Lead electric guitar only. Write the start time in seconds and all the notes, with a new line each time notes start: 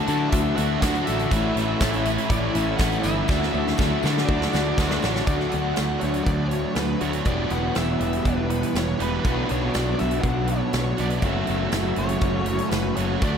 0.07 A5
0.29 E5
0.56 E5
0.81 F#5
1.06 E5
2.29 D5
2.56 E5
2.77 F#5
3.03 E5
4.26 D5
4.78 B4 D5
5.02 C#5
5.27 D5
5.49 F#5
5.75 F#5
5.99 C#5
6.24 D5
6.49 C#5
6.75 B4
7.02 C#5
7.27 D5
7.51 F#5
7.78 E5
8.01 E5
8.26 B4
8.51 B4
8.78 C#5
9.02 B4
9.26 B4
9.52 C#5
9.73 D5
9.99 E5
10.21 F#5
10.49 C#5
10.74 C#5
11.00 D5
11.24 E5
11.73 E5
11.98 C#5
12.70 B4
12.96 C#5
13.24 D5